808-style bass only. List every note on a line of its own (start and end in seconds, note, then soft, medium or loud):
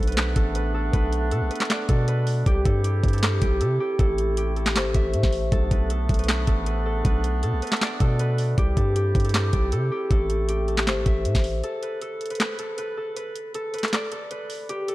0.00 0.35 B1 loud
0.36 0.91 A1 loud
0.93 1.33 B1 loud
1.32 1.43 B2 loud
1.41 1.50 B1 loud
1.89 2.44 B2 loud
2.46 2.65 C2 loud
2.65 3.02 G2 loud
3.04 3.40 G2 loud
3.42 3.62 B1 loud
3.61 3.79 C3 loud
3.99 4.77 A1 loud
4.76 4.87 G1 loud
4.85 4.94 A1 loud
4.95 5.15 A1 loud
5.14 5.23 A2 loud
5.23 5.51 A1 loud
5.52 5.70 B1 loud
5.71 6.08 B1 loud
6.09 6.46 B1 loud
6.47 7.03 A1 loud
7.05 7.45 B1 loud
7.43 7.54 B2 loud
7.53 7.62 B1 loud
8.00 8.55 B2 loud
8.58 8.76 C2 loud
8.77 9.14 G2 loud
9.15 9.52 G2 loud
9.53 9.74 B1 loud
9.72 9.91 C3 loud
10.11 10.89 A1 loud
10.87 10.98 G1 loud
10.97 11.06 A1 loud
11.06 11.27 A1 loud
11.25 11.34 A2 loud
11.35 11.62 A1 loud